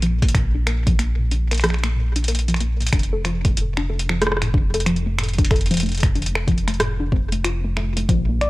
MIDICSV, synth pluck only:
0, 0, Header, 1, 2, 480
1, 0, Start_track
1, 0, Tempo, 645161
1, 258, Time_signature, 4, 2, 24, 8
1, 6323, End_track
2, 0, Start_track
2, 0, Title_t, "Synth pluck"
2, 0, Program_c, 0, 84
2, 19, Note_on_c, 0, 53, 99
2, 102, Note_off_c, 0, 53, 0
2, 168, Note_on_c, 0, 58, 78
2, 198, Note_off_c, 0, 58, 0
2, 258, Note_on_c, 0, 46, 83
2, 342, Note_off_c, 0, 46, 0
2, 407, Note_on_c, 0, 62, 72
2, 458, Note_off_c, 0, 62, 0
2, 498, Note_on_c, 0, 70, 101
2, 624, Note_off_c, 0, 70, 0
2, 647, Note_on_c, 0, 53, 96
2, 699, Note_off_c, 0, 53, 0
2, 738, Note_on_c, 0, 58, 79
2, 789, Note_off_c, 0, 58, 0
2, 887, Note_on_c, 0, 46, 77
2, 938, Note_off_c, 0, 46, 0
2, 978, Note_on_c, 0, 62, 72
2, 1062, Note_off_c, 0, 62, 0
2, 1127, Note_on_c, 0, 70, 103
2, 1204, Note_off_c, 0, 70, 0
2, 1218, Note_on_c, 0, 53, 101
2, 1302, Note_off_c, 0, 53, 0
2, 1368, Note_on_c, 0, 58, 79
2, 1398, Note_off_c, 0, 58, 0
2, 1458, Note_on_c, 0, 46, 76
2, 1542, Note_off_c, 0, 46, 0
2, 1607, Note_on_c, 0, 62, 76
2, 1658, Note_off_c, 0, 62, 0
2, 1698, Note_on_c, 0, 70, 102
2, 1824, Note_off_c, 0, 70, 0
2, 1847, Note_on_c, 0, 53, 97
2, 1898, Note_off_c, 0, 53, 0
2, 1938, Note_on_c, 0, 58, 74
2, 1989, Note_off_c, 0, 58, 0
2, 2088, Note_on_c, 0, 46, 76
2, 2139, Note_off_c, 0, 46, 0
2, 2179, Note_on_c, 0, 62, 83
2, 2263, Note_off_c, 0, 62, 0
2, 2328, Note_on_c, 0, 69, 97
2, 2404, Note_off_c, 0, 69, 0
2, 2419, Note_on_c, 0, 53, 100
2, 2503, Note_off_c, 0, 53, 0
2, 2568, Note_on_c, 0, 57, 75
2, 2598, Note_off_c, 0, 57, 0
2, 2659, Note_on_c, 0, 45, 82
2, 2743, Note_off_c, 0, 45, 0
2, 2808, Note_on_c, 0, 62, 80
2, 2859, Note_off_c, 0, 62, 0
2, 2899, Note_on_c, 0, 69, 92
2, 3024, Note_off_c, 0, 69, 0
2, 3048, Note_on_c, 0, 53, 99
2, 3099, Note_off_c, 0, 53, 0
2, 3139, Note_on_c, 0, 57, 79
2, 3189, Note_off_c, 0, 57, 0
2, 3288, Note_on_c, 0, 45, 80
2, 3339, Note_off_c, 0, 45, 0
2, 3378, Note_on_c, 0, 62, 79
2, 3462, Note_off_c, 0, 62, 0
2, 3527, Note_on_c, 0, 69, 100
2, 3604, Note_off_c, 0, 69, 0
2, 3618, Note_on_c, 0, 53, 99
2, 3702, Note_off_c, 0, 53, 0
2, 3767, Note_on_c, 0, 57, 75
2, 3798, Note_off_c, 0, 57, 0
2, 3858, Note_on_c, 0, 45, 77
2, 3942, Note_off_c, 0, 45, 0
2, 4006, Note_on_c, 0, 62, 76
2, 4058, Note_off_c, 0, 62, 0
2, 4097, Note_on_c, 0, 69, 101
2, 4223, Note_off_c, 0, 69, 0
2, 4246, Note_on_c, 0, 53, 99
2, 4298, Note_off_c, 0, 53, 0
2, 4338, Note_on_c, 0, 57, 77
2, 4388, Note_off_c, 0, 57, 0
2, 4487, Note_on_c, 0, 45, 75
2, 4538, Note_off_c, 0, 45, 0
2, 4578, Note_on_c, 0, 62, 80
2, 4662, Note_off_c, 0, 62, 0
2, 4727, Note_on_c, 0, 69, 99
2, 4804, Note_off_c, 0, 69, 0
2, 4818, Note_on_c, 0, 53, 96
2, 4902, Note_off_c, 0, 53, 0
2, 4968, Note_on_c, 0, 57, 78
2, 4998, Note_off_c, 0, 57, 0
2, 5059, Note_on_c, 0, 45, 79
2, 5142, Note_off_c, 0, 45, 0
2, 5207, Note_on_c, 0, 62, 76
2, 5259, Note_off_c, 0, 62, 0
2, 5299, Note_on_c, 0, 60, 78
2, 5382, Note_off_c, 0, 60, 0
2, 5447, Note_on_c, 0, 57, 75
2, 5524, Note_off_c, 0, 57, 0
2, 5538, Note_on_c, 0, 65, 86
2, 5664, Note_off_c, 0, 65, 0
2, 5688, Note_on_c, 0, 57, 73
2, 5765, Note_off_c, 0, 57, 0
2, 5779, Note_on_c, 0, 57, 99
2, 5904, Note_off_c, 0, 57, 0
2, 5928, Note_on_c, 0, 57, 75
2, 5958, Note_off_c, 0, 57, 0
2, 6019, Note_on_c, 0, 53, 102
2, 6103, Note_off_c, 0, 53, 0
2, 6168, Note_on_c, 0, 58, 74
2, 6198, Note_off_c, 0, 58, 0
2, 6258, Note_on_c, 0, 46, 76
2, 6323, Note_off_c, 0, 46, 0
2, 6323, End_track
0, 0, End_of_file